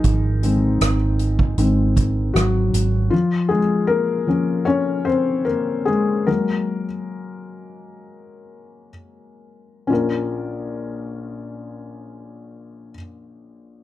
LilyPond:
<<
  \new Staff \with { instrumentName = "Felt piano" } { \time 4/4 \key bes \minor \tempo 4 = 72 <ees ees'>4 r2 <ges ges'>4 | <f f'>8 <aes aes'>8 <bes bes'>4 <des' des''>8 <c' c''>8 <bes bes'>8 <aes aes'>8 | bes'2. r4 | <des' f' bes'>1 | }
  \new Staff \with { instrumentName = "Felt piano" } { \clef bass \time 4/4 \key bes \minor r8 <ees aes c'>8 r4 <ees aes c'>8 r4. | r4. <f bes des'>2~ <f bes des'>8 | <ges aes bes>8 r2. r8 | bes,,1 | }
  \new Staff \with { instrumentName = "Fingered electric bass" } { \clef bass \time 4/4 \key bes \minor aes,,4 aes,,4 aes,,4 aes,,8 aes,,8 | r1 | r1 | r1 | }
  \new DrumStaff \with { instrumentName = "Drums" } \drummode { \time 4/4 <hh bd>8 hh8 <hh ss>8 hh16 bd16 hh8 <hh bd>8 <hh ss>8 hh8 | r4 r4 r4 r4 | r4 r4 r4 r4 | r4 r4 r4 r4 | }
>>